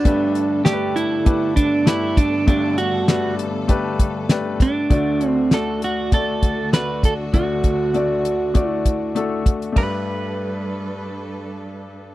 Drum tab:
RD |----------------|----------------|----------------|----------------|
HH |x-x-x-x-x-x-x-x-|x-x-x-x-x-x-x-x-|x-x-x-x-x-x-x-x-|x-x-x-x-x-x-x-xx|
SD |----o-------o---|----o-------o---|----o-------o---|----------------|
BD |o-------o-o---o-|o-------o-o---o-|o-------o-o---o-|o-o-----o-o---o-|

RD |x---------------|
HH |----------------|
SD |----------------|
BD |o---------------|